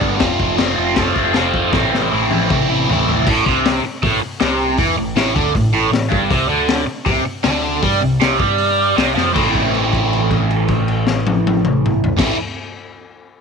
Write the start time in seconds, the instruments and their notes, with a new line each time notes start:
Already playing: overdriven electric guitar G2 D3 G3 B3 D4
0.01 picked electric bass G1, kick
0.17 picked electric bass F1, overdriven electric guitar F3 A3 C4, kick, snare, crash
0.22 overdriven electric guitar F4
0.39 picked electric bass F1, kick
0.56 picked electric bass F1, overdriven electric guitar F3 A3 C4 F4, snare, crash
0.76 picked electric bass F1, overdriven electric guitar A3 C4 F4
0.96 picked electric bass F1, overdriven electric guitar F3 A3 C4 F4, kick, snare, crash
1.14 picked electric bass F1, overdriven electric guitar C4 F4, kick
1.18 overdriven electric guitar A3
1.33 picked electric bass F1, overdriven electric guitar F3 A3 C4 F4, snare, crash
1.54 picked electric bass F1, kick
1.71 picked electric bass A1, overdriven electric guitar A2 E3 A3 C4 E4, kick, snare
1.93 picked electric bass A1, snare
2.11 picked electric bass A1, overdriven electric guitar E3 A3 C4 E4
2.30 picked electric bass A1, overdriven electric guitar A3 C4 E4, high tom
2.50 picked electric bass A1, overdriven electric guitar E3 A3 C4 E4, kick, mid tom
2.69 picked electric bass A1, overdriven electric guitar C4 E4
2.73 overdriven electric guitar A3
2.88 picked electric bass A1, overdriven electric guitar A2 E3 A3, floor tom
2.93 overdriven electric guitar C4 E4
3.06 picked electric bass A1, floor tom
3.27 picked electric bass A1, overdriven electric guitar A2, kick, crash
3.46 picked electric bass C2, overdriven electric guitar C3, kick
3.65 snare, open hi-hat
3.83 muted picked electric bass stroke, muted overdriven electric guitar stroke
4.02 picked electric bass A1, overdriven electric guitar A2, kick, open hi-hat
4.22 muted picked electric bass stroke, muted overdriven electric guitar stroke
4.40 picked electric bass C2, overdriven electric guitar C3, snare, open hi-hat
4.77 picked electric bass E2, overdriven electric guitar E3, kick, open hi-hat
4.97 picked electric bass A1, overdriven electric guitar A2
5.16 picked electric bass A1, overdriven electric guitar A2, snare, open hi-hat
5.35 picked electric bass D2, overdriven electric guitar D3, kick
5.55 picked electric bass A1, overdriven electric guitar A2, kick, open hi-hat
5.72 picked electric bass A1, overdriven electric guitar A2
5.91 picked electric bass A1, overdriven electric guitar A2, snare, open hi-hat
6.10 picked electric bass G1, overdriven electric guitar G2, kick
6.30 picked electric bass C2, overdriven electric guitar C3, kick, open hi-hat
6.47 picked electric bass D2, overdriven electric guitar D3
6.68 snare, open hi-hat
6.85 muted picked electric bass stroke, muted overdriven electric guitar stroke
7.06 picked electric bass C2, overdriven electric guitar C3, kick, open hi-hat
7.23 muted picked electric bass stroke, muted overdriven electric guitar stroke
7.44 picked electric bass D2, overdriven electric guitar D3, snare, open hi-hat
7.82 picked electric bass G2, overdriven electric guitar G3, kick, open hi-hat
8.02 picked electric bass C2, overdriven electric guitar C3
8.21 picked electric bass C2, overdriven electric guitar C3, snare, open hi-hat
8.39 picked electric bass G2, overdriven electric guitar G3, kick
8.58 open hi-hat
8.96 picked electric bass C2, overdriven electric guitar C3, snare, open hi-hat
9.15 picked electric bass F2, overdriven electric guitar F3, snare
9.33 picked electric bass A1, overdriven electric guitar A2 E3 A3 C4, kick, crash
9.37 overdriven electric guitar E4
9.55 kick, crash
9.75 crash
9.93 kick, crash
10.13 crash
10.31 kick, crash
10.50 crash
10.68 kick, crash
10.88 crash
11.07 snare
11.27 high tom
11.47 high tom
11.65 mid tom
11.86 mid tom
12.04 floor tom
12.17 picked electric bass A1, overdriven electric guitar A2 E3 A3 C4 E4, kick, snare, crash